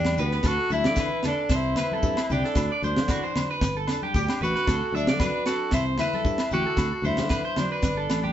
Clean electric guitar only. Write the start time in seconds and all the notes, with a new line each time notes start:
0.19 B4
0.33 B4
0.45 A4
0.72 E5
0.86 D5
0.99 B4
1.25 A4
1.51 C5
1.78 B4
1.93 A4
2.32 G4
2.45 A4
2.72 D5
2.84 C5
3.10 F#4
3.24 C5
3.51 B4
3.77 A4
4.03 G4
4.42 B4
4.56 B4
4.68 A4
4.95 E5
5.09 D5
5.21 B4
5.47 A4
5.74 C5
6.01 B4
6.15 A4
6.53 G4
6.66 A4
7.05 C5
7.30 B4
7.45 C5
7.72 B4
7.97 A4
8.24 G4